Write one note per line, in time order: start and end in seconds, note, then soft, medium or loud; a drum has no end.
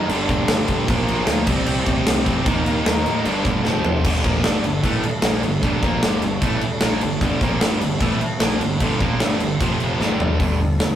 0.09 0.45 G1 loud
0.09 0.88 G2 medium
0.09 0.87 D3 medium
0.09 0.88 G3 medium
0.09 0.88 G3 loud
0.09 0.89 A#3 loud
0.09 0.88 D4 medium
0.09 0.88 A4 medium
0.09 crash medium
0.13 0.89 D4 loud
0.29 kick medium
0.29 crash medium
0.48 0.67 G1 medium
0.48 snare loud
0.48 crash medium
0.68 0.87 G1 medium
0.68 kick medium
0.68 crash medium
0.88 1.06 A#1 loud
0.88 1.46 A#2 medium
0.88 1.46 D3 medium
0.88 1.47 F3 medium
0.88 1.47 A#3 medium
0.88 1.47 A#3 loud
0.88 1.47 D4 medium
0.88 1.47 F4 medium
0.88 1.47 C5 medium
0.88 kick loud
0.88 crash medium
1.08 1.26 A#1 loud
1.08 crash medium
1.27 1.46 D2 loud
1.27 snare loud
1.27 crash medium
1.47 1.65 C2 medium
1.47 2.45 C3 medium
1.47 2.46 G3 medium
1.47 2.45 C4 medium
1.47 2.46 C4 medium
1.47 2.46 D#4 medium
1.47 2.45 G4 medium
1.47 2.45 D5 medium
1.47 kick loud
1.47 crash medium
1.66 1.85 C2 loud
1.66 crash medium
1.86 2.05 C2 medium
1.86 kick medium
1.86 crash medium
2.07 2.25 C2 medium
2.07 snare loud
2.07 crash medium
2.25 2.45 F2 medium
2.25 2.44 C3 medium
2.25 2.45 G3 medium
2.25 2.44 C4 medium
2.25 kick loud
2.25 crash medium
2.46 2.64 D#2 medium
2.46 3.24 D#3 medium
2.46 3.24 G3 medium
2.46 3.25 A#3 medium
2.46 3.25 D#4 medium
2.46 3.24 A#4 medium
2.46 3.25 F5 medium
2.46 kick loud
2.46 crash medium
2.66 2.84 D#2 loud
2.66 crash medium
2.86 3.04 D#2 medium
2.86 snare loud
2.86 crash medium
3.06 3.24 A2 medium
3.06 crash medium
3.24 3.62 G1 loud
3.24 3.64 G2 medium
3.24 3.64 D3 medium
3.24 3.64 G3 medium
3.24 3.64 A#3 medium
3.24 3.64 D4 medium
3.24 3.65 D4 loud
3.24 3.64 A4 medium
3.24 crash medium
3.45 kick medium
3.45 crash medium
3.65 3.83 F1 medium
3.65 4.04 F2 medium
3.65 4.04 C3 medium
3.65 4.04 F3 medium
3.65 4.05 A3 loud
3.65 4.04 C4 medium
3.65 4.05 C4 loud
3.65 4.04 G4 medium
3.65 snare medium
3.85 4.03 F1 medium
3.85 floor tom loud
4.04 4.23 G1 loud
4.04 4.23 G2 medium
4.04 4.24 D3 medium
4.04 9.56 G3 medium
4.04 4.24 G3 loud
4.04 7.18 D4 medium
4.04 9.56 A4 medium
4.04 kick loud
4.04 crash loud
4.04 crash medium
4.24 4.43 A#1 loud
4.24 4.44 A#2 medium
4.24 4.44 F3 loud
4.24 4.44 A#3 loud
4.24 kick loud
4.24 crash medium
4.44 4.63 G2 medium
4.44 4.64 D3 loud
4.44 4.64 G3 loud
4.44 snare loud
4.44 crash medium
4.64 4.83 G1 medium
4.64 4.80 G2 medium
4.64 4.81 D3 medium
4.64 crash medium
4.83 5.02 A1 loud
4.83 5.04 A2 loud
4.83 5.04 E3 loud
4.83 5.04 A3 loud
4.83 kick loud
4.83 crash medium
5.03 muted overdriven electric guitar stroke medium
5.03 muted fingered electric bass stroke soft
5.03 muted distorted electric guitar stroke medium
5.03 crash medium
5.22 5.41 A#1 loud
5.22 5.43 A#2 medium
5.22 5.43 F3 medium
5.22 5.43 A#3 loud
5.22 snare loud
5.22 crash medium
5.43 5.62 G1 medium
5.43 5.59 G2 medium
5.43 5.60 D3 medium
5.43 crash medium
5.63 5.81 G1 medium
5.63 5.83 G2 medium
5.63 5.83 D3 medium
5.63 5.83 G3 loud
5.63 kick loud
5.63 crash medium
5.83 6.01 A#1 loud
5.83 6.03 A#2 medium
5.83 6.03 F3 loud
5.83 6.03 A#3 loud
5.83 kick loud
5.83 crash medium
6.02 6.21 G1 medium
6.02 6.22 G2 medium
6.02 6.22 D3 loud
6.02 6.22 G3 loud
6.02 snare loud
6.02 crash medium
6.22 6.41 G1 medium
6.22 6.39 G2 medium
6.22 6.39 D3 medium
6.22 crash medium
6.41 6.60 A1 medium
6.41 6.62 A2 loud
6.41 6.62 E3 loud
6.41 6.62 A3 loud
6.41 kick loud
6.41 crash medium
6.61 muted fingered electric bass stroke soft
6.61 muted overdriven electric guitar stroke medium
6.61 muted distorted electric guitar stroke medium
6.61 crash medium
6.81 7.01 A#1 medium
6.81 7.02 A#2 medium
6.81 snare loud
6.81 crash medium
6.85 7.02 F3 loud
6.85 7.03 A#3 loud
7.01 7.20 G1 medium
7.01 7.19 G2 medium
7.01 7.19 D3 medium
7.01 crash medium
7.21 7.40 G1 medium
7.21 7.41 G2 medium
7.21 7.42 D3 medium
7.21 7.42 G3 loud
7.21 9.97 C4 medium
7.21 kick loud
7.21 crash medium
7.41 7.60 A#1 loud
7.41 7.61 A#2 medium
7.41 7.61 F3 loud
7.41 7.61 A#3 loud
7.41 kick loud
7.41 crash medium
7.61 7.80 G1 medium
7.61 7.81 G2 medium
7.61 7.81 D3 loud
7.61 7.81 G3 loud
7.61 snare loud
7.61 crash medium
7.81 7.99 G1 medium
7.81 7.97 G2 medium
7.81 7.98 D3 medium
7.81 crash medium
8.01 8.19 A1 loud
8.01 8.20 A2 medium
8.01 8.21 E3 loud
8.01 8.21 A3 medium
8.01 kick loud
8.01 crash medium
8.21 muted overdriven electric guitar stroke medium
8.21 muted fingered electric bass stroke soft
8.21 muted distorted electric guitar stroke medium
8.21 crash medium
8.40 8.59 A#1 loud
8.40 8.60 A#2 medium
8.40 8.60 F3 loud
8.40 8.60 A#3 medium
8.40 snare loud
8.40 crash medium
8.60 8.79 G1 medium
8.60 8.77 G2 medium
8.60 8.77 D3 medium
8.60 crash medium
8.80 8.99 G1 loud
8.80 9.00 G2 medium
8.80 9.00 D3 medium
8.80 9.00 G3 medium
8.80 kick loud
8.80 crash medium
9.00 9.19 A#1 loud
9.00 9.20 A#2 medium
9.00 9.20 F3 medium
9.00 9.20 A#3 medium
9.00 kick loud
9.00 crash medium
9.20 9.39 G1 loud
9.20 9.39 G2 medium
9.20 9.39 D3 medium
9.20 9.40 G3 loud
9.20 snare loud
9.20 crash medium
9.40 9.59 G1 medium
9.40 9.56 G2 medium
9.40 9.56 D3 medium
9.40 crash medium
9.60 9.97 F1 loud
9.60 9.99 F2 medium
9.60 9.99 C3 medium
9.60 9.99 F3 loud
9.60 10.00 F3 medium
9.60 9.99 G4 medium
9.60 kick loud
9.60 crash medium
9.80 crash medium
9.98 10.37 G1 loud
9.98 10.39 G2 medium
9.98 10.39 D3 loud
9.98 10.39 G3 medium
9.98 10.39 G3 loud
9.98 10.39 D4 medium
9.98 10.38 A4 medium
9.98 snare medium
10.20 floor tom medium
10.39 10.56 G1 medium
10.39 10.58 G2 medium
10.39 10.59 D3 loud
10.39 10.95 G3 medium
10.39 10.59 G3 medium
10.39 10.95 D4 medium
10.39 10.95 A4 medium
10.39 kick loud
10.39 open hi-hat medium
10.59 10.76 G1 medium
10.59 10.77 G2 medium
10.59 10.78 D3 medium
10.79 10.95 G1 medium
10.79 10.95 G2 medium
10.79 10.95 D3 medium
10.79 snare loud
10.79 open hi-hat medium